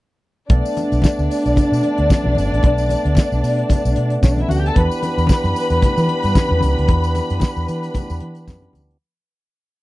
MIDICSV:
0, 0, Header, 1, 6, 480
1, 0, Start_track
1, 0, Key_signature, 2, "minor"
1, 0, Tempo, 532387
1, 445, Time_signature, 4, 2, 24, 8
1, 8856, End_track
2, 0, Start_track
2, 0, Title_t, "String section"
2, 0, Program_c, 0, 48
2, 451, Note_on_c, 0, 74, 96
2, 453, Note_on_c, 0, 62, 85
2, 3735, Note_off_c, 0, 74, 0
2, 3736, Note_off_c, 0, 62, 0
2, 3815, Note_on_c, 0, 61, 65
2, 3818, Note_on_c, 0, 73, 66
2, 3887, Note_on_c, 0, 74, 72
2, 3891, Note_on_c, 0, 62, 70
2, 3893, Note_off_c, 0, 61, 0
2, 3894, Note_off_c, 0, 73, 0
2, 3969, Note_off_c, 0, 74, 0
2, 3971, Note_off_c, 0, 62, 0
2, 3975, Note_on_c, 0, 76, 71
2, 3977, Note_on_c, 0, 64, 63
2, 4053, Note_off_c, 0, 76, 0
2, 4053, Note_on_c, 0, 78, 80
2, 4054, Note_off_c, 0, 64, 0
2, 4054, Note_on_c, 0, 66, 77
2, 4132, Note_off_c, 0, 66, 0
2, 4132, Note_off_c, 0, 78, 0
2, 4136, Note_on_c, 0, 67, 78
2, 4137, Note_on_c, 0, 79, 90
2, 4213, Note_off_c, 0, 67, 0
2, 4214, Note_off_c, 0, 79, 0
2, 4216, Note_on_c, 0, 69, 86
2, 4218, Note_on_c, 0, 81, 96
2, 4293, Note_off_c, 0, 69, 0
2, 4294, Note_off_c, 0, 81, 0
2, 4301, Note_on_c, 0, 71, 85
2, 4302, Note_on_c, 0, 83, 98
2, 7854, Note_off_c, 0, 71, 0
2, 7854, Note_off_c, 0, 83, 0
2, 8856, End_track
3, 0, Start_track
3, 0, Title_t, "Tonewheel organ"
3, 0, Program_c, 1, 16
3, 450, Note_on_c, 1, 57, 56
3, 454, Note_on_c, 1, 62, 63
3, 458, Note_on_c, 1, 59, 56
3, 4257, Note_off_c, 1, 57, 0
3, 4299, Note_on_c, 1, 67, 67
3, 4304, Note_on_c, 1, 52, 53
3, 8092, Note_off_c, 1, 62, 0
3, 8092, Note_off_c, 1, 67, 0
3, 8094, Note_off_c, 1, 59, 0
3, 8095, Note_off_c, 1, 52, 0
3, 8856, End_track
4, 0, Start_track
4, 0, Title_t, "Fingered electric bass"
4, 0, Program_c, 2, 33
4, 454, Note_on_c, 2, 35, 104
4, 549, Note_off_c, 2, 35, 0
4, 830, Note_on_c, 2, 35, 77
4, 904, Note_off_c, 2, 35, 0
4, 1071, Note_on_c, 2, 38, 82
4, 1145, Note_off_c, 2, 38, 0
4, 1313, Note_on_c, 2, 35, 78
4, 1387, Note_off_c, 2, 35, 0
4, 1550, Note_on_c, 2, 47, 84
4, 1625, Note_off_c, 2, 47, 0
4, 1790, Note_on_c, 2, 38, 68
4, 1865, Note_off_c, 2, 38, 0
4, 2031, Note_on_c, 2, 35, 82
4, 2106, Note_off_c, 2, 35, 0
4, 2141, Note_on_c, 2, 31, 88
4, 2235, Note_off_c, 2, 31, 0
4, 2275, Note_on_c, 2, 33, 85
4, 2348, Note_off_c, 2, 33, 0
4, 2378, Note_on_c, 2, 35, 104
4, 2649, Note_off_c, 2, 35, 0
4, 2751, Note_on_c, 2, 38, 80
4, 2826, Note_off_c, 2, 38, 0
4, 2993, Note_on_c, 2, 35, 83
4, 3068, Note_off_c, 2, 35, 0
4, 3095, Note_on_c, 2, 47, 90
4, 3269, Note_off_c, 2, 47, 0
4, 3473, Note_on_c, 2, 35, 90
4, 3547, Note_off_c, 2, 35, 0
4, 3580, Note_on_c, 2, 47, 102
4, 3752, Note_off_c, 2, 47, 0
4, 3814, Note_on_c, 2, 35, 92
4, 3988, Note_off_c, 2, 35, 0
4, 4054, Note_on_c, 2, 38, 82
4, 4228, Note_off_c, 2, 38, 0
4, 4296, Note_on_c, 2, 40, 110
4, 4392, Note_off_c, 2, 40, 0
4, 4666, Note_on_c, 2, 40, 75
4, 4743, Note_off_c, 2, 40, 0
4, 4905, Note_on_c, 2, 42, 85
4, 4981, Note_off_c, 2, 42, 0
4, 5142, Note_on_c, 2, 40, 82
4, 5219, Note_off_c, 2, 40, 0
4, 5386, Note_on_c, 2, 52, 98
4, 5462, Note_off_c, 2, 52, 0
4, 5627, Note_on_c, 2, 43, 78
4, 5702, Note_off_c, 2, 43, 0
4, 5868, Note_on_c, 2, 40, 88
4, 5943, Note_off_c, 2, 40, 0
4, 5973, Note_on_c, 2, 37, 80
4, 6069, Note_off_c, 2, 37, 0
4, 6112, Note_on_c, 2, 38, 86
4, 6185, Note_off_c, 2, 38, 0
4, 6209, Note_on_c, 2, 40, 103
4, 6481, Note_off_c, 2, 40, 0
4, 6585, Note_on_c, 2, 42, 83
4, 6661, Note_off_c, 2, 42, 0
4, 6821, Note_on_c, 2, 40, 84
4, 6898, Note_off_c, 2, 40, 0
4, 6931, Note_on_c, 2, 52, 89
4, 7104, Note_off_c, 2, 52, 0
4, 7304, Note_on_c, 2, 40, 87
4, 7379, Note_off_c, 2, 40, 0
4, 7406, Note_on_c, 2, 52, 96
4, 7646, Note_on_c, 2, 42, 87
4, 7659, Note_off_c, 2, 52, 0
4, 7820, Note_off_c, 2, 42, 0
4, 7885, Note_on_c, 2, 38, 88
4, 8060, Note_off_c, 2, 38, 0
4, 8856, End_track
5, 0, Start_track
5, 0, Title_t, "Muted fingered electric bass strokes"
5, 5253, Note_on_c, 9, 29, 46
5, 5343, Note_off_c, 9, 29, 0
5, 8856, End_track
6, 0, Start_track
6, 0, Title_t, "Drums"
6, 448, Note_on_c, 9, 42, 74
6, 450, Note_on_c, 9, 36, 117
6, 450, Note_on_c, 9, 62, 57
6, 538, Note_off_c, 9, 42, 0
6, 540, Note_off_c, 9, 36, 0
6, 540, Note_off_c, 9, 62, 0
6, 590, Note_on_c, 9, 54, 55
6, 680, Note_off_c, 9, 54, 0
6, 691, Note_on_c, 9, 42, 75
6, 695, Note_on_c, 9, 62, 47
6, 698, Note_on_c, 9, 54, 51
6, 782, Note_off_c, 9, 42, 0
6, 785, Note_off_c, 9, 62, 0
6, 788, Note_off_c, 9, 54, 0
6, 829, Note_on_c, 9, 42, 38
6, 835, Note_on_c, 9, 54, 36
6, 919, Note_off_c, 9, 42, 0
6, 919, Note_on_c, 9, 63, 67
6, 925, Note_off_c, 9, 54, 0
6, 935, Note_on_c, 9, 36, 95
6, 938, Note_on_c, 9, 54, 91
6, 947, Note_on_c, 9, 38, 113
6, 1009, Note_off_c, 9, 63, 0
6, 1025, Note_off_c, 9, 36, 0
6, 1028, Note_off_c, 9, 54, 0
6, 1037, Note_off_c, 9, 38, 0
6, 1072, Note_on_c, 9, 54, 35
6, 1162, Note_off_c, 9, 54, 0
6, 1179, Note_on_c, 9, 46, 69
6, 1185, Note_on_c, 9, 54, 64
6, 1270, Note_off_c, 9, 46, 0
6, 1275, Note_off_c, 9, 54, 0
6, 1314, Note_on_c, 9, 54, 35
6, 1316, Note_on_c, 9, 42, 46
6, 1404, Note_off_c, 9, 54, 0
6, 1406, Note_off_c, 9, 42, 0
6, 1410, Note_on_c, 9, 62, 53
6, 1410, Note_on_c, 9, 64, 69
6, 1416, Note_on_c, 9, 36, 102
6, 1420, Note_on_c, 9, 54, 55
6, 1424, Note_on_c, 9, 42, 77
6, 1500, Note_off_c, 9, 62, 0
6, 1500, Note_off_c, 9, 64, 0
6, 1506, Note_off_c, 9, 36, 0
6, 1510, Note_off_c, 9, 54, 0
6, 1514, Note_off_c, 9, 42, 0
6, 1563, Note_on_c, 9, 54, 60
6, 1645, Note_on_c, 9, 62, 32
6, 1653, Note_off_c, 9, 54, 0
6, 1656, Note_on_c, 9, 42, 75
6, 1735, Note_off_c, 9, 62, 0
6, 1746, Note_off_c, 9, 42, 0
6, 1783, Note_on_c, 9, 42, 46
6, 1873, Note_off_c, 9, 42, 0
6, 1889, Note_on_c, 9, 63, 69
6, 1896, Note_on_c, 9, 36, 112
6, 1896, Note_on_c, 9, 54, 77
6, 1907, Note_on_c, 9, 38, 100
6, 1979, Note_off_c, 9, 63, 0
6, 1986, Note_off_c, 9, 36, 0
6, 1986, Note_off_c, 9, 54, 0
6, 1998, Note_off_c, 9, 38, 0
6, 2017, Note_on_c, 9, 63, 54
6, 2107, Note_off_c, 9, 63, 0
6, 2119, Note_on_c, 9, 63, 71
6, 2146, Note_on_c, 9, 54, 50
6, 2150, Note_on_c, 9, 42, 64
6, 2209, Note_off_c, 9, 63, 0
6, 2236, Note_off_c, 9, 54, 0
6, 2241, Note_off_c, 9, 42, 0
6, 2290, Note_on_c, 9, 42, 49
6, 2370, Note_on_c, 9, 62, 57
6, 2377, Note_on_c, 9, 36, 113
6, 2379, Note_off_c, 9, 42, 0
6, 2379, Note_on_c, 9, 42, 76
6, 2460, Note_off_c, 9, 62, 0
6, 2468, Note_off_c, 9, 36, 0
6, 2469, Note_off_c, 9, 42, 0
6, 2507, Note_on_c, 9, 54, 56
6, 2597, Note_off_c, 9, 54, 0
6, 2607, Note_on_c, 9, 62, 48
6, 2615, Note_on_c, 9, 54, 55
6, 2620, Note_on_c, 9, 42, 68
6, 2697, Note_off_c, 9, 62, 0
6, 2705, Note_off_c, 9, 54, 0
6, 2710, Note_off_c, 9, 42, 0
6, 2753, Note_on_c, 9, 42, 39
6, 2840, Note_on_c, 9, 63, 68
6, 2843, Note_off_c, 9, 42, 0
6, 2854, Note_on_c, 9, 54, 86
6, 2856, Note_on_c, 9, 36, 106
6, 2867, Note_on_c, 9, 38, 115
6, 2930, Note_off_c, 9, 63, 0
6, 2944, Note_off_c, 9, 54, 0
6, 2946, Note_off_c, 9, 36, 0
6, 2957, Note_off_c, 9, 38, 0
6, 2994, Note_on_c, 9, 54, 35
6, 3084, Note_off_c, 9, 54, 0
6, 3098, Note_on_c, 9, 46, 71
6, 3102, Note_on_c, 9, 54, 66
6, 3188, Note_off_c, 9, 46, 0
6, 3192, Note_off_c, 9, 54, 0
6, 3233, Note_on_c, 9, 42, 44
6, 3324, Note_off_c, 9, 42, 0
6, 3330, Note_on_c, 9, 62, 45
6, 3330, Note_on_c, 9, 64, 67
6, 3334, Note_on_c, 9, 36, 105
6, 3338, Note_on_c, 9, 54, 53
6, 3339, Note_on_c, 9, 42, 82
6, 3420, Note_off_c, 9, 62, 0
6, 3420, Note_off_c, 9, 64, 0
6, 3424, Note_off_c, 9, 36, 0
6, 3429, Note_off_c, 9, 42, 0
6, 3429, Note_off_c, 9, 54, 0
6, 3474, Note_on_c, 9, 54, 58
6, 3564, Note_off_c, 9, 54, 0
6, 3569, Note_on_c, 9, 42, 77
6, 3659, Note_off_c, 9, 42, 0
6, 3698, Note_on_c, 9, 42, 49
6, 3789, Note_off_c, 9, 42, 0
6, 3809, Note_on_c, 9, 63, 63
6, 3811, Note_on_c, 9, 36, 103
6, 3817, Note_on_c, 9, 54, 80
6, 3822, Note_on_c, 9, 38, 105
6, 3899, Note_off_c, 9, 63, 0
6, 3902, Note_off_c, 9, 36, 0
6, 3907, Note_off_c, 9, 54, 0
6, 3912, Note_off_c, 9, 38, 0
6, 3936, Note_on_c, 9, 63, 54
6, 3948, Note_on_c, 9, 42, 38
6, 4027, Note_off_c, 9, 63, 0
6, 4039, Note_off_c, 9, 42, 0
6, 4044, Note_on_c, 9, 63, 77
6, 4065, Note_on_c, 9, 42, 66
6, 4065, Note_on_c, 9, 54, 56
6, 4134, Note_off_c, 9, 63, 0
6, 4155, Note_off_c, 9, 42, 0
6, 4155, Note_off_c, 9, 54, 0
6, 4200, Note_on_c, 9, 42, 46
6, 4289, Note_on_c, 9, 62, 55
6, 4291, Note_off_c, 9, 42, 0
6, 4291, Note_on_c, 9, 42, 73
6, 4292, Note_on_c, 9, 36, 115
6, 4379, Note_off_c, 9, 62, 0
6, 4381, Note_off_c, 9, 42, 0
6, 4383, Note_off_c, 9, 36, 0
6, 4430, Note_on_c, 9, 54, 57
6, 4521, Note_off_c, 9, 54, 0
6, 4531, Note_on_c, 9, 62, 52
6, 4535, Note_on_c, 9, 42, 67
6, 4536, Note_on_c, 9, 54, 51
6, 4621, Note_off_c, 9, 62, 0
6, 4625, Note_off_c, 9, 42, 0
6, 4626, Note_off_c, 9, 54, 0
6, 4672, Note_on_c, 9, 42, 38
6, 4673, Note_on_c, 9, 54, 33
6, 4751, Note_on_c, 9, 63, 70
6, 4762, Note_off_c, 9, 42, 0
6, 4763, Note_off_c, 9, 54, 0
6, 4770, Note_on_c, 9, 54, 100
6, 4773, Note_on_c, 9, 36, 113
6, 4785, Note_on_c, 9, 38, 111
6, 4841, Note_off_c, 9, 63, 0
6, 4860, Note_off_c, 9, 54, 0
6, 4863, Note_off_c, 9, 36, 0
6, 4875, Note_off_c, 9, 38, 0
6, 4909, Note_on_c, 9, 54, 38
6, 4913, Note_on_c, 9, 42, 34
6, 4999, Note_off_c, 9, 54, 0
6, 5004, Note_off_c, 9, 42, 0
6, 5014, Note_on_c, 9, 54, 61
6, 5015, Note_on_c, 9, 46, 63
6, 5104, Note_off_c, 9, 54, 0
6, 5105, Note_off_c, 9, 46, 0
6, 5140, Note_on_c, 9, 54, 36
6, 5152, Note_on_c, 9, 42, 41
6, 5230, Note_off_c, 9, 54, 0
6, 5242, Note_off_c, 9, 42, 0
6, 5247, Note_on_c, 9, 62, 46
6, 5247, Note_on_c, 9, 64, 69
6, 5251, Note_on_c, 9, 36, 105
6, 5253, Note_on_c, 9, 54, 52
6, 5260, Note_on_c, 9, 42, 80
6, 5337, Note_off_c, 9, 62, 0
6, 5337, Note_off_c, 9, 64, 0
6, 5341, Note_off_c, 9, 36, 0
6, 5343, Note_off_c, 9, 54, 0
6, 5350, Note_off_c, 9, 42, 0
6, 5387, Note_on_c, 9, 54, 56
6, 5395, Note_on_c, 9, 42, 34
6, 5477, Note_off_c, 9, 54, 0
6, 5480, Note_on_c, 9, 62, 35
6, 5485, Note_off_c, 9, 42, 0
6, 5489, Note_on_c, 9, 42, 75
6, 5570, Note_off_c, 9, 62, 0
6, 5580, Note_off_c, 9, 42, 0
6, 5615, Note_on_c, 9, 42, 48
6, 5625, Note_on_c, 9, 54, 35
6, 5706, Note_off_c, 9, 42, 0
6, 5715, Note_off_c, 9, 54, 0
6, 5723, Note_on_c, 9, 63, 64
6, 5728, Note_on_c, 9, 54, 78
6, 5729, Note_on_c, 9, 36, 110
6, 5741, Note_on_c, 9, 38, 107
6, 5814, Note_off_c, 9, 63, 0
6, 5819, Note_off_c, 9, 36, 0
6, 5819, Note_off_c, 9, 54, 0
6, 5831, Note_off_c, 9, 38, 0
6, 5850, Note_on_c, 9, 63, 55
6, 5940, Note_off_c, 9, 63, 0
6, 5956, Note_on_c, 9, 63, 79
6, 5973, Note_on_c, 9, 54, 52
6, 5983, Note_on_c, 9, 42, 66
6, 6046, Note_off_c, 9, 63, 0
6, 6063, Note_off_c, 9, 54, 0
6, 6073, Note_off_c, 9, 42, 0
6, 6118, Note_on_c, 9, 42, 44
6, 6204, Note_on_c, 9, 62, 56
6, 6208, Note_off_c, 9, 42, 0
6, 6208, Note_on_c, 9, 42, 72
6, 6209, Note_on_c, 9, 36, 112
6, 6295, Note_off_c, 9, 62, 0
6, 6298, Note_off_c, 9, 42, 0
6, 6299, Note_off_c, 9, 36, 0
6, 6345, Note_on_c, 9, 54, 60
6, 6435, Note_off_c, 9, 54, 0
6, 6445, Note_on_c, 9, 62, 54
6, 6449, Note_on_c, 9, 42, 61
6, 6449, Note_on_c, 9, 54, 50
6, 6535, Note_off_c, 9, 62, 0
6, 6539, Note_off_c, 9, 42, 0
6, 6539, Note_off_c, 9, 54, 0
6, 6581, Note_on_c, 9, 54, 35
6, 6586, Note_on_c, 9, 42, 38
6, 6670, Note_on_c, 9, 63, 73
6, 6671, Note_off_c, 9, 54, 0
6, 6676, Note_off_c, 9, 42, 0
6, 6682, Note_on_c, 9, 54, 85
6, 6687, Note_on_c, 9, 36, 98
6, 6698, Note_on_c, 9, 38, 113
6, 6760, Note_off_c, 9, 63, 0
6, 6772, Note_off_c, 9, 54, 0
6, 6778, Note_off_c, 9, 36, 0
6, 6789, Note_off_c, 9, 38, 0
6, 6821, Note_on_c, 9, 54, 36
6, 6911, Note_off_c, 9, 54, 0
6, 6927, Note_on_c, 9, 54, 57
6, 6929, Note_on_c, 9, 42, 67
6, 7017, Note_off_c, 9, 54, 0
6, 7019, Note_off_c, 9, 42, 0
6, 7059, Note_on_c, 9, 54, 33
6, 7066, Note_on_c, 9, 42, 46
6, 7149, Note_off_c, 9, 54, 0
6, 7157, Note_off_c, 9, 42, 0
6, 7161, Note_on_c, 9, 62, 46
6, 7161, Note_on_c, 9, 64, 66
6, 7165, Note_on_c, 9, 36, 99
6, 7168, Note_on_c, 9, 54, 54
6, 7170, Note_on_c, 9, 42, 75
6, 7251, Note_off_c, 9, 62, 0
6, 7251, Note_off_c, 9, 64, 0
6, 7255, Note_off_c, 9, 36, 0
6, 7258, Note_off_c, 9, 54, 0
6, 7260, Note_off_c, 9, 42, 0
6, 7300, Note_on_c, 9, 54, 54
6, 7306, Note_on_c, 9, 42, 32
6, 7391, Note_off_c, 9, 54, 0
6, 7392, Note_on_c, 9, 62, 35
6, 7396, Note_off_c, 9, 42, 0
6, 7398, Note_on_c, 9, 42, 79
6, 7482, Note_off_c, 9, 62, 0
6, 7488, Note_off_c, 9, 42, 0
6, 7527, Note_on_c, 9, 42, 52
6, 7541, Note_on_c, 9, 54, 35
6, 7617, Note_off_c, 9, 42, 0
6, 7631, Note_off_c, 9, 54, 0
6, 7639, Note_on_c, 9, 63, 69
6, 7642, Note_on_c, 9, 36, 107
6, 7644, Note_on_c, 9, 54, 77
6, 7653, Note_on_c, 9, 38, 107
6, 7729, Note_off_c, 9, 63, 0
6, 7732, Note_off_c, 9, 36, 0
6, 7734, Note_off_c, 9, 54, 0
6, 7743, Note_off_c, 9, 38, 0
6, 7767, Note_on_c, 9, 63, 60
6, 7774, Note_on_c, 9, 42, 34
6, 7857, Note_off_c, 9, 63, 0
6, 7865, Note_off_c, 9, 42, 0
6, 7872, Note_on_c, 9, 63, 73
6, 7888, Note_on_c, 9, 54, 55
6, 7891, Note_on_c, 9, 42, 66
6, 7962, Note_off_c, 9, 63, 0
6, 7978, Note_off_c, 9, 54, 0
6, 7981, Note_off_c, 9, 42, 0
6, 8029, Note_on_c, 9, 42, 45
6, 8119, Note_off_c, 9, 42, 0
6, 8856, End_track
0, 0, End_of_file